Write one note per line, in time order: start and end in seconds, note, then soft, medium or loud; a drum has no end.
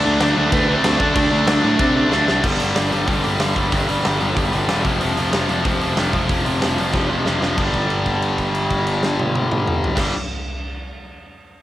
0.00 0.20 D3 loud
0.00 0.19 A3 medium
0.00 0.33 D4 medium
0.00 0.32 D5 loud
0.05 0.17 D2 medium
0.05 0.18 D4 loud
0.19 0.32 D2 loud
0.19 0.36 D3 medium
0.19 0.36 A3 loud
0.19 0.36 D4 loud
0.19 snare loud
0.19 crash medium
0.36 0.48 D2 medium
0.36 0.52 D3 medium
0.36 0.52 A3 loud
0.36 0.52 D4 loud
0.36 0.52 D4 medium
0.36 0.52 D5 medium
0.52 0.75 D2 loud
0.52 0.68 D3 medium
0.52 0.68 A3 medium
0.52 0.68 B3 medium
0.52 0.70 D4 medium
0.52 0.67 B4 medium
0.52 kick loud
0.52 crash medium
0.68 0.85 D3 medium
0.68 0.85 A3 loud
0.68 0.76 B3 medium
0.68 0.84 D4 loud
0.68 0.76 B4 loud
0.76 0.99 C4 medium
0.76 0.99 C5 loud
0.84 0.96 D2 loud
0.84 0.99 D3 medium
0.84 0.99 A3 loud
0.84 1.01 D4 loud
0.84 snare loud
0.84 crash medium
1.00 1.15 D3 loud
1.00 1.12 D3 medium
1.00 1.14 A3 loud
1.00 2.08 D4 medium
1.00 1.14 D4 loud
1.00 2.08 D5 medium
1.00 kick medium
1.15 1.27 D2 loud
1.15 1.29 D3 medium
1.15 1.30 A3 loud
1.15 1.30 D4 loud
1.15 kick loud
1.15 crash medium
1.30 1.43 D2 loud
1.30 1.47 D3 medium
1.30 1.46 A3 loud
1.30 1.46 D4 loud
1.47 1.59 D2 loud
1.47 1.61 D3 medium
1.47 1.62 A3 medium
1.47 1.62 D4 loud
1.47 snare loud
1.47 crash medium
1.63 1.75 A2 medium
1.63 1.79 D3 loud
1.63 1.79 A3 loud
1.63 1.78 D4 loud
1.79 2.02 C3 loud
1.79 1.94 D3 medium
1.79 1.95 A3 medium
1.79 1.96 D4 loud
1.79 kick loud
1.79 crash medium
1.96 2.11 D3 medium
1.96 2.10 A3 medium
1.96 2.10 D4 loud
2.11 2.24 D2 medium
2.11 2.26 D3 medium
2.11 2.27 A3 medium
2.11 2.27 D4 loud
2.11 snare medium
2.27 2.46 C2 medium
2.27 2.42 D3 medium
2.27 2.43 A3 loud
2.27 2.43 D4 loud
2.27 snare loud
2.43 2.59 G1 medium
2.43 2.59 G2 medium
2.43 2.58 D3 loud
2.43 2.59 G3 loud
2.43 kick loud
2.43 crash loud
2.59 2.76 G1 medium
2.59 2.75 G2 medium
2.59 2.74 D3 medium
2.59 2.76 G3 medium
2.59 open hi-hat medium
2.75 2.92 G1 medium
2.75 2.91 G2 medium
2.75 2.91 D3 medium
2.75 2.90 G3 medium
2.75 snare loud
2.75 open hi-hat medium
2.92 3.07 G1 medium
2.92 3.06 G2 medium
2.92 3.07 D3 medium
2.92 3.07 G3 medium
2.92 open hi-hat medium
3.07 3.23 G1 medium
3.07 3.23 G2 medium
3.07 3.23 D3 medium
3.07 3.22 G3 medium
3.07 kick loud
3.07 open hi-hat medium
3.23 3.40 G1 medium
3.23 3.39 G2 medium
3.23 3.39 D3 medium
3.23 3.40 G3 medium
3.23 open hi-hat medium
3.40 3.56 G1 medium
3.40 3.55 G2 medium
3.40 3.55 D3 medium
3.40 3.54 G3 medium
3.40 snare loud
3.40 open hi-hat medium
3.55 3.71 G1 medium
3.55 3.71 G2 medium
3.55 3.71 D3 medium
3.55 3.71 G3 loud
3.55 kick medium
3.55 open hi-hat medium
3.72 3.87 G1 loud
3.72 3.88 G2 medium
3.72 3.88 D3 medium
3.72 3.88 G3 medium
3.72 kick loud
3.72 open hi-hat medium
3.89 4.04 G1 medium
3.89 4.03 G2 medium
3.89 4.04 D3 medium
3.89 4.04 G3 medium
3.89 open hi-hat medium
4.05 4.20 G1 medium
4.05 4.21 G2 medium
4.05 4.20 D3 medium
4.05 4.19 G3 medium
4.05 snare loud
4.05 open hi-hat medium
4.20 4.36 G1 medium
4.20 4.35 G2 medium
4.20 4.36 D3 medium
4.20 4.36 G3 medium
4.20 open hi-hat medium
4.37 4.52 G1 medium
4.37 4.52 G2 medium
4.37 4.52 D3 medium
4.37 4.51 G3 medium
4.37 kick loud
4.37 open hi-hat medium
4.52 4.68 G1 medium
4.52 4.67 G2 medium
4.52 4.67 D3 medium
4.52 4.68 G3 medium
4.52 open hi-hat soft
4.68 4.84 E1 medium
4.68 4.83 G2 medium
4.68 4.83 D3 medium
4.68 4.84 G3 medium
4.68 snare loud
4.68 open hi-hat medium
4.83 5.00 F1 medium
4.83 5.00 F2 medium
4.83 4.99 C3 medium
4.83 5.00 F3 loud
4.83 kick loud
4.83 open hi-hat medium
5.00 5.17 F1 medium
5.00 5.17 F2 medium
5.00 5.17 C3 loud
5.00 5.18 F3 medium
5.00 open hi-hat medium
5.17 5.33 F1 medium
5.17 5.33 F2 medium
5.17 5.32 C3 medium
5.17 5.32 F3 medium
5.17 open hi-hat medium
5.32 5.49 F1 medium
5.32 5.49 F2 medium
5.32 5.49 C3 medium
5.32 5.50 F3 medium
5.32 snare loud
5.32 open hi-hat medium
5.49 5.64 F1 medium
5.49 5.64 F2 medium
5.49 5.64 C3 medium
5.49 5.63 F3 medium
5.49 open hi-hat medium
5.64 5.80 F1 medium
5.64 5.80 F2 medium
5.64 5.81 C3 medium
5.64 5.81 F3 loud
5.64 kick loud
5.64 open hi-hat medium
5.81 5.97 F1 medium
5.81 5.97 F2 medium
5.81 5.96 C3 medium
5.81 5.95 F3 medium
5.81 open hi-hat soft
5.97 6.14 F1 medium
5.97 6.13 F2 medium
5.97 6.13 C3 medium
5.97 6.13 F3 medium
5.97 snare loud
5.97 open hi-hat medium
6.13 6.29 F1 medium
6.13 6.29 F2 medium
6.13 6.29 C3 medium
6.13 6.28 F3 medium
6.13 kick medium
6.13 open hi-hat soft
6.29 6.45 F1 medium
6.29 6.43 F2 medium
6.29 6.44 C3 loud
6.29 6.44 F3 medium
6.29 kick loud
6.29 open hi-hat medium
6.45 6.62 F1 medium
6.45 6.61 F2 medium
6.45 6.60 C3 medium
6.45 6.60 F3 medium
6.45 open hi-hat medium
6.61 6.78 F1 medium
6.61 6.76 F2 medium
6.61 6.76 C3 medium
6.61 6.77 F3 medium
6.61 snare loud
6.61 open hi-hat medium
6.77 6.94 F1 medium
6.77 6.93 F2 medium
6.77 6.92 C3 medium
6.77 6.92 F3 medium
6.77 open hi-hat medium
6.93 7.09 F1 medium
6.93 7.08 F2 medium
6.93 7.08 C3 medium
6.93 7.09 F3 medium
6.93 kick loud
6.93 snare medium
7.09 7.26 F1 medium
7.09 7.26 F2 medium
7.09 7.25 C3 medium
7.09 7.24 F3 medium
7.25 7.57 F1 medium
7.25 7.39 F2 medium
7.25 7.40 C3 medium
7.25 7.40 F3 medium
7.25 snare medium
7.41 7.57 F2 medium
7.41 7.57 C3 medium
7.41 7.57 F3 medium
7.41 snare medium
7.57 9.90 G1 medium
7.57 9.95 G2 medium
7.57 9.98 D3 medium
7.57 9.99 G3 medium
7.57 kick medium
7.57 crash medium
7.74 kick medium
7.74 crash soft
7.90 crash soft
8.06 kick medium
8.06 crash soft
8.22 crash soft
8.38 kick medium
8.38 crash soft
8.55 crash soft
8.70 kick medium
8.70 crash soft
8.87 crash soft
9.03 snare medium
9.19 high tom medium
9.35 high tom medium
9.52 mid tom medium
9.68 mid tom medium
9.84 floor tom medium
9.96 10.11 G1 medium
9.96 10.11 G2 medium
9.96 10.12 D3 medium
9.96 10.13 G3 medium
9.96 kick loud
9.96 snare medium
9.96 crash loud